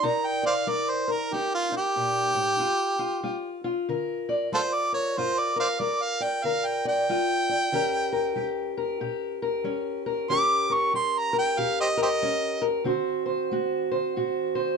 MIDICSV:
0, 0, Header, 1, 3, 480
1, 0, Start_track
1, 0, Key_signature, -2, "minor"
1, 0, Tempo, 642398
1, 28, Time_signature, 4, 2, 24, 8
1, 11036, End_track
2, 0, Start_track
2, 0, Title_t, "Harmonica"
2, 0, Program_c, 0, 22
2, 38, Note_on_c, 0, 82, 90
2, 197, Note_on_c, 0, 79, 88
2, 208, Note_off_c, 0, 82, 0
2, 340, Note_off_c, 0, 79, 0
2, 345, Note_on_c, 0, 72, 63
2, 345, Note_on_c, 0, 74, 63
2, 345, Note_on_c, 0, 77, 91
2, 400, Note_off_c, 0, 74, 0
2, 406, Note_off_c, 0, 72, 0
2, 512, Note_on_c, 0, 74, 99
2, 523, Note_off_c, 0, 77, 0
2, 669, Note_on_c, 0, 72, 89
2, 680, Note_off_c, 0, 74, 0
2, 833, Note_on_c, 0, 70, 90
2, 844, Note_off_c, 0, 72, 0
2, 993, Note_on_c, 0, 67, 93
2, 1004, Note_off_c, 0, 70, 0
2, 1144, Note_off_c, 0, 67, 0
2, 1153, Note_on_c, 0, 65, 102
2, 1304, Note_off_c, 0, 65, 0
2, 1323, Note_on_c, 0, 67, 122
2, 2721, Note_off_c, 0, 67, 0
2, 3393, Note_on_c, 0, 65, 76
2, 3393, Note_on_c, 0, 69, 76
2, 3393, Note_on_c, 0, 72, 109
2, 3441, Note_off_c, 0, 69, 0
2, 3448, Note_off_c, 0, 65, 0
2, 3538, Note_on_c, 0, 74, 99
2, 3550, Note_off_c, 0, 72, 0
2, 3686, Note_off_c, 0, 74, 0
2, 3691, Note_on_c, 0, 73, 94
2, 3870, Note_on_c, 0, 72, 102
2, 3881, Note_off_c, 0, 73, 0
2, 4024, Note_on_c, 0, 74, 92
2, 4036, Note_off_c, 0, 72, 0
2, 4177, Note_off_c, 0, 74, 0
2, 4183, Note_on_c, 0, 72, 68
2, 4183, Note_on_c, 0, 74, 68
2, 4183, Note_on_c, 0, 77, 97
2, 4244, Note_off_c, 0, 72, 0
2, 4249, Note_off_c, 0, 74, 0
2, 4336, Note_on_c, 0, 74, 90
2, 4348, Note_off_c, 0, 77, 0
2, 4499, Note_on_c, 0, 77, 98
2, 4510, Note_off_c, 0, 74, 0
2, 4653, Note_on_c, 0, 79, 86
2, 4664, Note_off_c, 0, 77, 0
2, 4817, Note_on_c, 0, 77, 95
2, 4828, Note_off_c, 0, 79, 0
2, 4974, Note_on_c, 0, 79, 93
2, 4985, Note_off_c, 0, 77, 0
2, 5131, Note_off_c, 0, 79, 0
2, 5144, Note_on_c, 0, 79, 109
2, 6552, Note_off_c, 0, 79, 0
2, 7696, Note_on_c, 0, 86, 117
2, 8020, Note_on_c, 0, 85, 98
2, 8031, Note_off_c, 0, 86, 0
2, 8176, Note_off_c, 0, 85, 0
2, 8184, Note_on_c, 0, 84, 94
2, 8354, Note_on_c, 0, 82, 100
2, 8365, Note_off_c, 0, 84, 0
2, 8501, Note_off_c, 0, 82, 0
2, 8506, Note_on_c, 0, 79, 102
2, 8663, Note_on_c, 0, 77, 96
2, 8674, Note_off_c, 0, 79, 0
2, 8818, Note_off_c, 0, 77, 0
2, 8824, Note_on_c, 0, 67, 69
2, 8824, Note_on_c, 0, 72, 69
2, 8824, Note_on_c, 0, 75, 99
2, 8870, Note_off_c, 0, 67, 0
2, 8873, Note_off_c, 0, 72, 0
2, 8979, Note_off_c, 0, 75, 0
2, 8985, Note_on_c, 0, 67, 73
2, 8985, Note_on_c, 0, 72, 73
2, 8985, Note_on_c, 0, 75, 105
2, 9030, Note_off_c, 0, 72, 0
2, 9031, Note_off_c, 0, 67, 0
2, 9452, Note_off_c, 0, 75, 0
2, 11036, End_track
3, 0, Start_track
3, 0, Title_t, "Steel-string acoustic guitar"
3, 0, Program_c, 1, 25
3, 20, Note_on_c, 1, 48, 69
3, 23, Note_on_c, 1, 63, 63
3, 32, Note_on_c, 1, 70, 62
3, 38, Note_on_c, 1, 74, 68
3, 319, Note_off_c, 1, 74, 0
3, 322, Note_on_c, 1, 74, 65
3, 466, Note_off_c, 1, 48, 0
3, 499, Note_on_c, 1, 55, 66
3, 501, Note_off_c, 1, 70, 0
3, 504, Note_on_c, 1, 70, 54
3, 801, Note_off_c, 1, 70, 0
3, 804, Note_on_c, 1, 70, 60
3, 945, Note_off_c, 1, 55, 0
3, 983, Note_off_c, 1, 63, 0
3, 990, Note_on_c, 1, 55, 64
3, 1000, Note_on_c, 1, 63, 61
3, 1276, Note_off_c, 1, 63, 0
3, 1285, Note_on_c, 1, 63, 61
3, 1430, Note_off_c, 1, 55, 0
3, 1463, Note_on_c, 1, 46, 63
3, 1749, Note_off_c, 1, 46, 0
3, 1752, Note_on_c, 1, 45, 69
3, 1924, Note_off_c, 1, 63, 0
3, 1934, Note_off_c, 1, 45, 0
3, 1937, Note_on_c, 1, 43, 77
3, 1940, Note_on_c, 1, 65, 63
3, 2232, Note_off_c, 1, 65, 0
3, 2235, Note_on_c, 1, 65, 61
3, 2382, Note_off_c, 1, 43, 0
3, 2415, Note_off_c, 1, 65, 0
3, 2416, Note_on_c, 1, 55, 64
3, 2418, Note_on_c, 1, 65, 59
3, 2719, Note_off_c, 1, 65, 0
3, 2722, Note_on_c, 1, 65, 62
3, 2862, Note_off_c, 1, 55, 0
3, 2904, Note_on_c, 1, 50, 66
3, 2906, Note_off_c, 1, 70, 0
3, 2909, Note_on_c, 1, 70, 64
3, 2937, Note_off_c, 1, 74, 0
3, 3204, Note_on_c, 1, 74, 69
3, 3345, Note_off_c, 1, 50, 0
3, 3379, Note_off_c, 1, 65, 0
3, 3379, Note_on_c, 1, 55, 70
3, 3388, Note_on_c, 1, 65, 62
3, 3677, Note_off_c, 1, 70, 0
3, 3680, Note_on_c, 1, 70, 63
3, 3822, Note_off_c, 1, 55, 0
3, 3841, Note_off_c, 1, 65, 0
3, 3842, Note_off_c, 1, 74, 0
3, 3866, Note_on_c, 1, 43, 71
3, 3871, Note_on_c, 1, 65, 64
3, 3874, Note_off_c, 1, 70, 0
3, 3877, Note_on_c, 1, 70, 64
3, 4152, Note_off_c, 1, 70, 0
3, 4155, Note_on_c, 1, 70, 59
3, 4306, Note_off_c, 1, 43, 0
3, 4330, Note_on_c, 1, 55, 62
3, 4337, Note_off_c, 1, 70, 0
3, 4340, Note_on_c, 1, 70, 57
3, 4636, Note_on_c, 1, 74, 68
3, 4778, Note_off_c, 1, 55, 0
3, 4812, Note_on_c, 1, 50, 69
3, 4817, Note_off_c, 1, 70, 0
3, 4820, Note_on_c, 1, 70, 66
3, 5110, Note_off_c, 1, 74, 0
3, 5119, Note_on_c, 1, 74, 67
3, 5258, Note_off_c, 1, 50, 0
3, 5294, Note_off_c, 1, 65, 0
3, 5300, Note_on_c, 1, 55, 65
3, 5304, Note_on_c, 1, 65, 58
3, 5590, Note_off_c, 1, 74, 0
3, 5599, Note_on_c, 1, 74, 66
3, 5742, Note_off_c, 1, 55, 0
3, 5758, Note_off_c, 1, 65, 0
3, 5759, Note_off_c, 1, 74, 0
3, 5770, Note_on_c, 1, 51, 73
3, 5775, Note_on_c, 1, 61, 63
3, 5778, Note_off_c, 1, 70, 0
3, 5781, Note_on_c, 1, 67, 62
3, 5786, Note_on_c, 1, 70, 67
3, 6068, Note_off_c, 1, 70, 0
3, 6071, Note_on_c, 1, 70, 70
3, 6218, Note_off_c, 1, 51, 0
3, 6243, Note_on_c, 1, 55, 58
3, 6247, Note_off_c, 1, 67, 0
3, 6250, Note_on_c, 1, 67, 59
3, 6553, Note_off_c, 1, 70, 0
3, 6556, Note_on_c, 1, 70, 68
3, 6694, Note_off_c, 1, 55, 0
3, 6728, Note_off_c, 1, 67, 0
3, 6728, Note_on_c, 1, 46, 68
3, 6731, Note_on_c, 1, 67, 64
3, 7032, Note_off_c, 1, 70, 0
3, 7040, Note_on_c, 1, 70, 71
3, 7177, Note_off_c, 1, 46, 0
3, 7196, Note_off_c, 1, 61, 0
3, 7203, Note_on_c, 1, 55, 63
3, 7207, Note_on_c, 1, 61, 61
3, 7508, Note_off_c, 1, 70, 0
3, 7517, Note_on_c, 1, 70, 70
3, 7656, Note_off_c, 1, 55, 0
3, 7671, Note_off_c, 1, 61, 0
3, 7674, Note_off_c, 1, 67, 0
3, 7679, Note_off_c, 1, 70, 0
3, 7693, Note_on_c, 1, 51, 75
3, 7694, Note_on_c, 1, 61, 63
3, 7703, Note_on_c, 1, 67, 61
3, 7707, Note_on_c, 1, 70, 70
3, 7984, Note_off_c, 1, 70, 0
3, 7993, Note_on_c, 1, 70, 69
3, 8141, Note_off_c, 1, 51, 0
3, 8169, Note_off_c, 1, 67, 0
3, 8171, Note_on_c, 1, 55, 61
3, 8178, Note_on_c, 1, 67, 59
3, 8457, Note_off_c, 1, 70, 0
3, 8465, Note_on_c, 1, 70, 70
3, 8620, Note_off_c, 1, 55, 0
3, 8648, Note_off_c, 1, 67, 0
3, 8649, Note_on_c, 1, 46, 67
3, 8657, Note_on_c, 1, 67, 67
3, 8938, Note_off_c, 1, 70, 0
3, 8947, Note_on_c, 1, 70, 73
3, 9100, Note_off_c, 1, 46, 0
3, 9125, Note_off_c, 1, 61, 0
3, 9133, Note_on_c, 1, 55, 69
3, 9134, Note_on_c, 1, 61, 64
3, 9418, Note_off_c, 1, 70, 0
3, 9427, Note_on_c, 1, 70, 73
3, 9583, Note_off_c, 1, 55, 0
3, 9597, Note_off_c, 1, 70, 0
3, 9597, Note_on_c, 1, 50, 74
3, 9598, Note_off_c, 1, 61, 0
3, 9600, Note_off_c, 1, 67, 0
3, 9604, Note_on_c, 1, 60, 64
3, 9608, Note_on_c, 1, 66, 68
3, 9616, Note_on_c, 1, 72, 68
3, 9897, Note_off_c, 1, 72, 0
3, 9906, Note_on_c, 1, 72, 72
3, 10056, Note_off_c, 1, 50, 0
3, 10097, Note_off_c, 1, 66, 0
3, 10098, Note_on_c, 1, 57, 65
3, 10106, Note_on_c, 1, 66, 61
3, 10388, Note_off_c, 1, 72, 0
3, 10397, Note_on_c, 1, 72, 72
3, 10548, Note_off_c, 1, 57, 0
3, 10578, Note_off_c, 1, 66, 0
3, 10583, Note_on_c, 1, 45, 67
3, 10587, Note_on_c, 1, 66, 66
3, 10864, Note_off_c, 1, 72, 0
3, 10873, Note_on_c, 1, 72, 73
3, 11031, Note_off_c, 1, 45, 0
3, 11036, Note_off_c, 1, 60, 0
3, 11036, Note_off_c, 1, 66, 0
3, 11036, Note_off_c, 1, 72, 0
3, 11036, End_track
0, 0, End_of_file